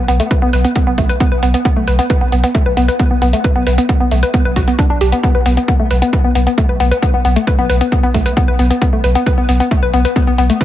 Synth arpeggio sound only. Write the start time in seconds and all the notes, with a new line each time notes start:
0.08 B3
0.20 A3
0.31 B4
0.42 B3
0.53 B4
0.65 B3
0.76 B3
0.87 B3
0.98 A3
1.09 B4
1.20 B3
1.32 B4
1.43 B3
1.54 B3
1.65 B3
1.77 A3
1.88 B4
1.99 B3
2.10 B4
2.21 B3
2.32 B3
2.44 B3
2.55 A3
2.66 B4
2.77 B3
2.88 B4
2.99 B3
3.11 B3
3.22 B3
3.33 A3
3.44 B4
3.56 B3
3.67 B4
3.78 B3
3.89 B3
4.00 B3
4.12 A3
4.23 B4
4.34 B3
4.45 B4
4.56 F#4
4.68 B3
4.79 D4
4.90 D4
5.01 G4
5.12 B3
5.23 B3
5.35 B4
5.46 B3
5.57 B3
5.68 B3
5.80 A3
5.91 B4
6.02 B3
6.13 B4
6.24 B3
6.35 B3
6.47 B3
6.58 A3
6.69 B4
6.80 B3
6.91 B4
7.02 B3
7.14 B3
7.25 B3
7.36 A3
7.47 B4
7.59 B3
7.70 B4
7.81 B3
7.92 B3
8.03 B3
8.14 A3
8.26 B4
8.37 B3
8.48 B4
8.59 B3
8.71 B3
8.82 B3
8.93 A3
9.04 B4
9.15 B3
9.26 B4
9.38 B3
9.49 B3
9.60 B3
9.71 A3
9.83 B4
9.94 B3
10.05 B4
10.16 B3
10.27 B3
10.38 B3
10.50 A3
10.61 B4